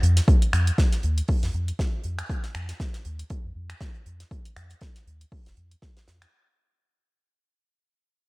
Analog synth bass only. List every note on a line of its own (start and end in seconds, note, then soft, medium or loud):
0.03 0.21 F2 medium
0.53 0.71 F2 loud
1.04 1.22 D#2 medium
1.43 1.50 F2 medium
1.54 1.72 F2 loud
2.04 2.22 F2 medium
2.55 2.73 F2 loud
3.05 3.23 D#2 medium
3.45 3.52 F2 medium
3.55 3.74 F2 loud
4.06 4.24 F2 medium
4.56 4.74 F2 loud
5.07 5.25 D#2 medium
5.46 5.54 F1 medium
5.57 5.75 F2 medium
6.08 6.26 F2 medium